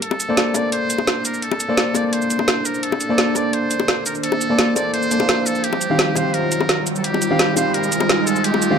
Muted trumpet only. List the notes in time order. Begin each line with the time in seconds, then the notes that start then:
0.03 A4
0.55 D5
0.73 C5
1.25 A#4
1.43 A4
1.95 D5
2.06 D5
2.13 C5
2.66 A#4
2.83 A4
3.36 D5
3.53 C5
4.06 A#4
4.24 A4
4.76 D5
4.93 C5
5.46 A4
5.64 G4
6.16 C5
6.34 A#4
6.97 A4
7.04 G4
7.57 C5
7.74 A#4
8.27 A4
8.44 G4